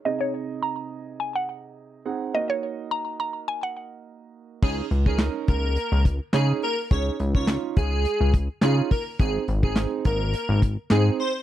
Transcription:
<<
  \new Staff \with { instrumentName = "Synth pluck" } { \time 4/4 \key des \major \tempo 4 = 105 ees''16 des''8. bes''4 aes''16 ges''8. r4 | ees''16 des''8. bes''8 bes''8 aes''16 ges''8. r4 | r1 | r1 |
r1 | }
  \new Staff \with { instrumentName = "Digital synth lead" } { \time 4/4 \key des \major r1 | r1 | aes'16 r8 aes'16 r8 bes'4 r8 aes'16 r16 bes'16 r16 | des''16 r8 des''16 r8 aes'4 r8 aes'16 r16 bes'16 r16 |
aes'16 r8 aes'16 r8 bes'4 r8 aes'16 r16 c''16 r16 | }
  \new Staff \with { instrumentName = "Grand piano" } { \time 4/4 \key des \major <c ees' aes' ees''>2.~ <c ees' aes' ees''>8 <c' ees' aes' ges''>8 | <bes ees' ges' ees''>1 | <des' ees' aes'>16 r8 <des' ees' bes'>4 r4 r16 <des' ees' aes'>8 r8 | <des' ees' aes'>16 r8 <des' ees' f'>4 r4 r16 <des' ees' f'>8 r8 |
<c' ees' aes'>16 r8 <c' ees' aes'>4 r4 r16 <c' ees' aes'>8 r8 | }
  \new Staff \with { instrumentName = "Analog synth bass" } { \clef bass \time 4/4 \key des \major r1 | r1 | des,8 des,4 des,8. des,8. des8 r8 | des,8 des,4 des,8. des,8. des8 r8 |
aes,,8 aes,,4 aes,,8. aes,,8. aes,8 r8 | }
  \new DrumStaff \with { instrumentName = "Drums" } \drummode { \time 4/4 r4 r4 r4 r4 | r4 r4 r4 r4 | <cymc bd>8 hh16 bd16 <hc hh sn>8 <hh bd>8 hh8 <hh bd>8 <hc hh sn>8 hho8 | <hh bd>8 hh16 bd16 <hc hh sn>8 <hh bd>8 hh8 <hh bd>8 <hc hh sn>8 <hho bd>8 |
<hh bd>8 hh16 bd16 <hc hh sn>8 <hh bd>8 hh8 <hh bd>8 <hc hh sn>8 hho8 | }
>>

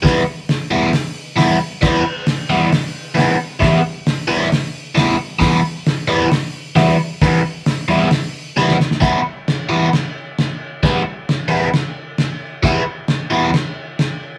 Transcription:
<<
  \new Staff \with { instrumentName = "Overdriven electric guitar" } { \time 4/4 \key e \minor \tempo 4 = 134 <e g b e'>8 r4 <e g b e'>8 r4 <e g b e'>8 r8 | <e g b e'>8 r4 <e g b e'>8 r4 <e g b e'>8 r8 | <e g b e'>8 r4 <e g b e'>8 r4 <e g b e'>8 r8 | <e g b e'>8 r4 <e g b e'>8 r4 <e g b e'>8 r8 |
<e g b e'>8 r4 <e g b e'>8 r4 <e g b e'>8 r8 | <e g b e'>8 r4 <e g b e'>8 r2 | <e g b e'>8 r4 <e g b e'>8 r2 | <e g b e'>8 r4 <e g b e'>8 r2 | }
  \new DrumStaff \with { instrumentName = "Drums" } \drummode { \time 4/4 <hho bd sn>4 <hho sn>4 <hho sn>4 <hho sn>4 | <cymc bd sn>4 <hho sn>4 <hho sn>4 <hho sn>4 | <hho bd sn>4 <hho sn>4 <hho sn>4 <hho sn>4 | <hho bd sn>4 <hho sn>4 <hho sn>4 <hho sn>4 |
<hho bd sn>4 <hho sn>4 <hho sn>4 sn16 sn16 sn16 sn16 | <cymc bd sn>4 <cymc sn>4 <cymc sn>4 <cymc sn>4 | <cymc bd sn>4 <cymc sn>4 <cymc sn>4 <cymc sn>4 | <cymc bd sn>4 <cymc sn>4 <cymc sn>4 <cymc sn>4 | }
>>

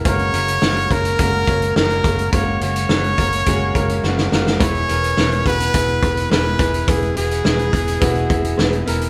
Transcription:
<<
  \new Staff \with { instrumentName = "Trumpet" } { \time 4/4 \key fis \mixolydian \tempo 4 = 106 cis''4. ais'4. ais'4 | cis''8 cis''2. r8 | cis''4. b'4. b'4 | gis'8 gis'2. r8 | }
  \new Staff \with { instrumentName = "Clean electric guitar" } { \time 4/4 \key fis \mixolydian r1 | r1 | <e gis b gis' b'>8 <b gis' b'>8 <gis b gis' b'>8 <b gis' b'>4. <gis b gis' b'>8 <b gis' b'>8 | <e gis b gis' b'>8 <b gis' b'>8 <gis b gis' b'>8 <b gis' b'>4. <gis b gis' b'>8 <b gis' b'>8 | }
  \new Staff \with { instrumentName = "Grand piano" } { \time 4/4 \key fis \mixolydian <gis ais cis' fis' ais'>8 <gis ais cis' fis' ais'>8 <gis ais cis' fis' ais'>8 <gis ais cis' fis' cis''>8 <gis ais cis' fis' ais'>8 <gis ais cis' fis' cis''>8 <gis ais cis' fis' ais'>8 <gis ais cis' fis' cis''>8 | <gis ais cis' fis' cis''>8 <gis ais cis' fis' gis'>8 <gis ais cis' fis' ais'>8 <gis ais cis' fis' ais'>8 <gis ais cis' fis' gis'>8 <gis ais cis' fis' ais'>8 <gis ais cis' fis' gis'>8 <gis ais cis' fis' ais'>8 | <b e' gis'>8 <b e' ais'>8 <b e' ais'>8 <b e' fis'>8 <b e' gis'>8 <b e' gis'>8 <b e' ais'>8 <b e' gis'>8 | <b e' b'>8 <b e' fis'>8 <b e' gis'>8 <b e' gis'>8 <b e' fis'>8 <b e' gis'>8 <b e' gis'>8 <b e' ais'>8 | }
  \new Staff \with { instrumentName = "Grand piano" } { \clef bass \time 4/4 \key fis \mixolydian r1 | r1 | e4. r2 r8 | e4. r2 r8 | }
  \new Staff \with { instrumentName = "Fingered electric bass" } { \clef bass \time 4/4 \key fis \mixolydian fis,,8 fis,,8 fis,,8 fis,,8 fis,,8 fis,,8 fis,,8 fis,,8 | fis,,8 fis,,8 fis,,8 fis,,8 fis,,8 fis,,8 fis,,8 fis,,8 | e,,8 e,,8 e,,8 e,,8 e,,8 e,,8 e,,8 e,,8 | e,,8 e,,8 e,,8 e,,8 e,,8 e,,8 e,,8 e,,8 | }
  \new DrumStaff \with { instrumentName = "Drums" } \drummode { \time 4/4 <hh bd>16 hh16 hh16 hh16 sn16 hh16 <hh bd>16 hh16 <hh bd>8 <hh bd>16 hh16 sn16 hh16 <hh bd sn>16 hh16 | <hh bd>8 hh16 hh16 sn16 hh16 <hh bd>16 hh16 <hh bd>8 <hh bd>16 hh16 sn16 sn16 sn16 sn16 | <hh bd>16 hh16 hh16 hh16 sn16 hh16 <hh bd>16 hh16 <hh bd>16 hh16 <hh bd>16 hh16 sn8 <hh bd sn>16 hh16 | <hh bd>16 hh16 hh16 hh16 sn16 hh16 <hh bd>16 hh16 <hh bd>16 hh16 <hh bd>16 hh16 sn16 hh16 hh16 hh16 | }
>>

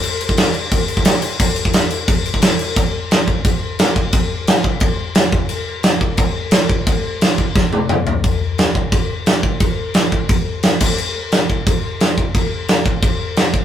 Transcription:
\new DrumStaff \with { instrumentName = "Drums" } \drummode { \time 4/4 \tempo 4 = 175 cymc8 cymc16 bd16 <cymc sn>8 cymc8 <cymc bd>8 cymc16 bd16 <cymc sn>8 cymc8 | <cymc bd>8 cymc16 bd16 <cymc sn>8 cymc8 <cymc bd>8 cymc16 bd16 <cymc sn>8 cymc8 | <cymc bd>4 <cymc sn>8 bd8 <cymc bd>4 <cymc sn>8 bd8 | <cymc bd>4 <cymc sn>8 bd8 <cymc bd>4 <cymc sn>8 bd8 |
cymc4 <cymc sn>8 bd8 <cymc bd>4 <cymc sn>8 bd8 | <cymc bd>4 <cymc sn>8 bd8 <bd sn>8 tommh8 toml8 tomfh8 | <cymc bd>4 <cymc sn>8 bd8 <cymc bd>4 <cymc sn>8 bd8 | <cymc bd>4 <cymc sn>8 bd8 <cymc bd>4 <cymc sn>8 <cymc bd>8 |
cymc4 <cymc sn>8 bd8 <cymc bd>4 <cymc sn>8 bd8 | <cymc bd>4 <cymc sn>8 bd8 <cymc bd>4 <cymc sn>8 bd8 | }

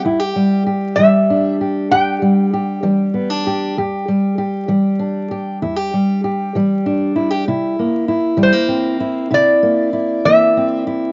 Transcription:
<<
  \new Staff \with { instrumentName = "Resonator guitar played with a steel bar" } { \time 12/8 \key e \minor \tempo 4. = 65 g''4. e''4 r8 g''2.~ | g''4 r1 r4 | r4. c''4. d''4. e''4 r8 | }
  \new Staff \with { instrumentName = "Steel-string acoustic guitar" } { \time 12/8 \key e \minor << { <g e'>16 g'16 g8 g'8 g8 d'8 g'8 g'8 g8 g'8 g8 b16 d'16 g'8 | g'8 g8 g'8 g8 d'8 g'8 e'16 g'16 g8 g'8 g8 d'8 e'16 g'16 | e'8 bes8 e'8 g16 bes16 c'8 e'8 e'8 bes8 e'8 bes8 c'8 e'8 | } \\ { e,4 r8 e4 r8 e,4 r8 e4 r8 | e,4 r8 e4 r8 e,4 r8 e4 r8 | c4 r8 e4 r8 c4 r8 e4 r8 | } >> }
>>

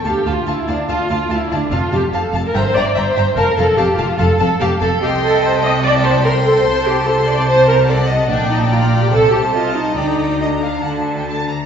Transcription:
<<
  \new Staff \with { instrumentName = "Violin section" } { \time 4/4 \key f \major \tempo 4 = 145 a''8 a''8 a''8 a''8 a''8 a''8 a''8 a''8 | a''8 a''8 a''8 a''8 bes''8 bes''8 bes''8 bes''8 | a''8 a''8 a''8 a''8 a''8 a''8 a''8 a''8 | \key g \minor g''4 a''4 a''4 c'''4~ |
c'''4 a''2 fis''4 | g''2 a''2 | bes''2 a''4. r8 | }
  \new Staff \with { instrumentName = "Violin section" } { \time 4/4 \key f \major << { a''8 a''8 a''8 a''8 a''8 a''8 a''8 a''8 | a''8 a''8 a''8 a''8 g''8 g''8 g''8 g''8 | a''8 a''8 a''8 a''8 a''8 a''8 a''8 a''8 | \key g \minor c'''4 g''4 g''2 |
a''4 c'''4 a''2~ | a''4 bes''4 a''4 a''4 | g''4 ees''8 f''8 fis''8. g''16 a''8 bes''8 | } \\ { f''8 f''8 f''8 f''8 f''8 f''8 f''8 f''8 | f''8 f''8 f''8 f''8 e''8 e''8 e''8 e''8 | f''8 f''8 f''8 f''8 f''8 f''8 f''8 f''8 | ees''2 d''4 c''4~ |
c''4 c''2 d''8 ees''8 | d''4 d''4 c''4 ees''4 | d''4 r2. | } >> }
  \new Staff \with { instrumentName = "Viola section" } { \time 4/4 \key f \major g'8 f'8 e'8 d'8 f'8 f'8 e'8 d'8 | f'8 g'8 a'8. bes'16 c''8 d''8 c''4 | bes'8 a'8 g'8 f'8 a'8 a'8 g'8 a'8 | \key g \minor g'8 a'8 c''8 ees''8 d''8 c''8 bes'8 a'8 |
c''8 g'8 a'8 d''8 c''8 bes'8 a'8 r8 | d'8 ees'8 f'8. g'16 a'8 g'8 f'8 ees'8 | ees'4 d'2~ d'8 r8 | }
  \new Staff \with { instrumentName = "Cello section" } { \clef bass \time 4/4 \key f \major d,8 d,8 d,8 d,8 d,8 d,8 d,8 d,8 | f,8 f,8 f,8 f,8 g,8 g,8 g,8 g,8 | f,8 f,8 f,8 f,8 f,8 f,8 f,8 f,8 | \key g \minor c1 |
c1 | bes,2 c2 | d2 d4. r8 | }
  \new Staff \with { instrumentName = "Double bass section" } { \clef bass \time 4/4 \key f \major d,8 d,8 d,8 d,8 d,8 d,8 d,8 d,8 | f,,8 f,,8 f,,8 f,,8 g,,8 g,,8 g,,8 g,,8 | f,,8 f,,8 f,,8 f,,8 f,,8 f,,8 f,,8 f,,8 | \key g \minor c,1 |
c,1 | bes,,2 c,2 | d,2 d,4. r8 | }
>>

